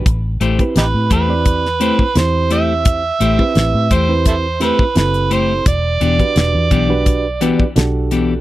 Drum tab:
HH |x-xxx-x-x-x-x-x-|x-x-x-x-x-x-xxx-|x-xxx-x-x-x-x-x-|
SD |----o----o--o---|----o-----o-o---|----o-------o---|
BD |o--o--o-o--o----|o--o--o-o--o----|o--o--o-o--o----|